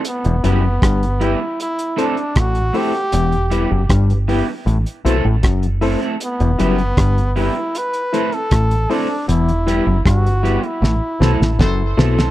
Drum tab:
HH |xxx-xxx-xxxxxxox|xxx-xxo-xxx-xxox|xxxxxxoxxxxxxxo-|xxx-xxxx--------|
SD |----r-------r---|----r-------r---|----r-------r---|----r---o-ooo-oo|
BD |----o-------o---|----o-------o---|----o-------o---|----o-------o---|